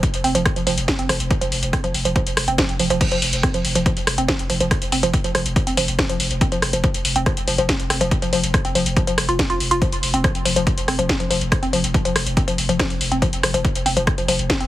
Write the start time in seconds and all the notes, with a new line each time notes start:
0.03 kick, closed hi-hat
0.14 F1, closed hi-hat
0.24 F1 C4, open hi-hat
0.35 F1 F3, closed hi-hat
0.45 kick, cross-stick, closed hi-hat
0.56 F1 F3, closed hi-hat
0.67 F1 F3, open hi-hat
0.78 F1, closed hi-hat
0.88 kick, snare, closed hi-hat
0.99 F1 C4, closed hi-hat
1.09 F1 F3, cross-stick, open hi-hat
1.20 F1, closed hi-hat
1.31 F3, kick, closed hi-hat
1.41 F1 F3, closed hi-hat
1.52 F1, open hi-hat
1.63 F1, closed hi-hat
1.73 C4, kick, cross-stick, closed hi-hat
1.84 F1 F3, closed hi-hat
1.94 F1, open hi-hat
2.05 F1 F3, closed hi-hat
2.16 F3, kick, closed hi-hat
2.26 F1, closed hi-hat
2.37 F1, cross-stick, open hi-hat
2.48 F1 C4, closed hi-hat
2.58 F3, kick, snare, closed hi-hat
2.69 F1, closed hi-hat
2.79 F1 F3, open hi-hat
2.90 F1 F3, closed hi-hat
3.01 F3, kick, closed hi-hat, crash
3.12 F1 F3, closed hi-hat
3.22 F1, open hi-hat
3.33 F1, closed hi-hat
3.43 C4, kick, cross-stick, closed hi-hat
3.54 F1 F3, closed hi-hat
3.65 F1, open hi-hat
3.75 F1 F3, closed hi-hat
3.86 F3, kick, closed hi-hat
3.97 F1, closed hi-hat
4.07 F1, cross-stick, open hi-hat
4.18 F1 C4, closed hi-hat
4.28 F3, kick, snare, closed hi-hat
4.39 F1, closed hi-hat
4.50 F1 F3, open hi-hat
4.60 F1 F3, closed hi-hat
4.71 kick, cross-stick, closed hi-hat
4.82 F1, closed hi-hat
4.92 F1 C4, open hi-hat
5.03 F1 F3, closed hi-hat
5.14 kick, closed hi-hat
5.24 F1 F3, closed hi-hat
5.35 F1 F3, cross-stick, open hi-hat
5.46 F1, closed hi-hat
5.56 kick, closed hi-hat
5.67 F1 C4, closed hi-hat
5.77 F1 F3, open hi-hat
5.88 F1, closed hi-hat
5.99 F3, kick, cross-stick, snare, closed hi-hat
6.09 F1 F3, closed hi-hat
6.20 F1, open hi-hat
6.31 F1, closed hi-hat
6.41 C4, kick, closed hi-hat
6.52 F1 F3, closed hi-hat
6.62 F1, cross-stick, open hi-hat
6.73 F1 F3, closed hi-hat
6.84 F3, kick, closed hi-hat
6.94 F1, closed hi-hat
7.05 F1, open hi-hat
7.16 F1 C4, closed hi-hat
7.26 F3, kick, cross-stick, closed hi-hat
7.37 F1, closed hi-hat
7.48 F1 F3, open hi-hat
7.58 F1 F3, closed hi-hat
7.69 kick, snare, closed hi-hat
7.80 F1, closed hi-hat
7.90 F1 C4, cross-stick, open hi-hat
8.01 F1 F3, closed hi-hat
8.11 kick, closed hi-hat
8.22 F1 F3, closed hi-hat
8.33 F1 F3, open hi-hat
8.43 F1, closed hi-hat
8.54 kick, cross-stick, closed hi-hat
8.65 F1 C4, closed hi-hat
8.75 F1 F3, open hi-hat
8.86 F1, closed hi-hat
8.97 F3, kick, closed hi-hat
9.07 F1 F3, closed hi-hat
9.18 F1, cross-stick, open hi-hat
9.29 F1 F4, closed hi-hat
9.39 kick, snare, closed hi-hat
9.50 F1 F4, closed hi-hat
9.60 F1, open hi-hat
9.71 F1 F4, closed hi-hat
9.82 F3, kick, closed hi-hat
9.92 F1, closed hi-hat
10.03 F1, open hi-hat
10.14 F1 C4, closed hi-hat
10.24 F3, kick, cross-stick, closed hi-hat
10.35 F1, closed hi-hat
10.45 F1 F3, open hi-hat
10.56 F1 F3, closed hi-hat
10.67 kick, closed hi-hat
10.78 F1, closed hi-hat
10.88 F1 C4, cross-stick, open hi-hat
10.99 F1 F3, closed hi-hat
11.09 kick, snare, closed hi-hat
11.20 F1 F3, closed hi-hat
11.30 F1 F3, open hi-hat
11.41 F1, closed hi-hat
11.52 kick, cross-stick, closed hi-hat
11.63 F1 C4, closed hi-hat
11.73 F1 F3, open hi-hat
11.84 F1, closed hi-hat
11.94 F3, kick, closed hi-hat
12.05 F1 F3, closed hi-hat
12.16 F1, cross-stick, open hi-hat
12.26 F1, closed hi-hat
12.37 C4, kick, closed hi-hat
12.48 F1 F3, closed hi-hat
12.58 F1, open hi-hat
12.69 F1 F3, closed hi-hat
12.79 F3, kick, cross-stick, snare, closed hi-hat
12.90 F1, closed hi-hat
13.01 F1, open hi-hat
13.12 F1 C4, closed hi-hat
13.22 F3, kick, closed hi-hat
13.33 F1, closed hi-hat
13.43 F1 F3, cross-stick, open hi-hat
13.54 F1 F3, closed hi-hat
13.65 kick, closed hi-hat
13.75 F1, closed hi-hat
13.86 F1 C4, open hi-hat
13.97 F1 F3, closed hi-hat
14.07 kick, cross-stick, closed hi-hat
14.18 F1 F3, closed hi-hat
14.28 F1 F3, open hi-hat
14.39 F1, closed hi-hat
14.50 kick, snare, closed hi-hat
14.61 F1 C4, closed hi-hat